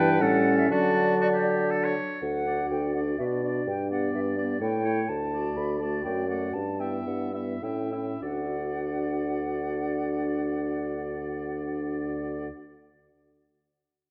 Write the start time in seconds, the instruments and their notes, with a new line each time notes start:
Already playing: bassoon G2, french horn E3, clarinet D4, oboe B4, flute G5
0.20 bassoon A2, french horn G3, clarinet C#4, oboe A4, flute F#5
0.59 flute E5
0.70 bassoon D3, french horn F#3, clarinet D4, oboe F#4, flute D5
1.21 oboe F#4
1.34 oboe G4
1.71 oboe A4
1.85 oboe C#5
2.22 bassoon D2, flute F#5
2.46 french horn D4, clarinet F#4, oboe D5
2.71 bassoon D2, flute G5
2.94 french horn D4, clarinet F#4, oboe D5, flute F#5
3.18 bassoon B2, french horn D4, clarinet F#4, oboe D5, flute E5
3.42 french horn D4, clarinet F#4, flute D5, oboe D5
3.67 bassoon G2, flute G5
3.91 french horn B3, clarinet G4, oboe D5, flute F#5
4.14 bassoon G2, flute E5
4.37 french horn B3, clarinet G4, flute D5, oboe D5
4.61 bassoon A2, french horn A3, clarinet E4, oboe C#5, flute G5
4.84 french horn A3, clarinet E4, oboe C#5
5.09 bassoon D2, flute A5
5.32 french horn A3, clarinet F#4, oboe D5
5.57 bassoon D2, flute B5
5.80 french horn A3, clarinet F#4, oboe D5, flute A5
6.04 bassoon F#2, french horn A3, clarinet F#4, oboe D5, flute G5
6.29 french horn A3, clarinet F#4, oboe D5, flute F#5
6.54 bassoon G2, flute A5
6.79 french horn B3, clarinet E4, oboe E5, flute G5
7.07 bassoon G2, flute F#5
7.33 french horn B3, clarinet E4, oboe E5, flute E5
7.62 bassoon A2, french horn C#4, clarinet E4, oboe E5, flute G5
7.92 french horn C#4, clarinet E4, oboe E5
8.21 bassoon D2, french horn D4, clarinet F#4, oboe D5, flute F#5